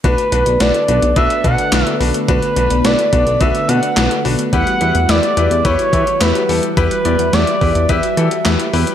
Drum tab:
HH |xxxxxxxxxxxxxxox|xxxxxxxxxxxxxxox|xxxxxxxxxxxxxxox|xxxxxxoxxxxxxxox|
CP |------------x---|------------x---|------------x---|------------x---|
SD |----o-------o---|----o-------o---|----o-------o---|----o-------o---|
BD |o-------o-o-----|o-----o-o-------|o-------o-o-----|o-----o-o-------|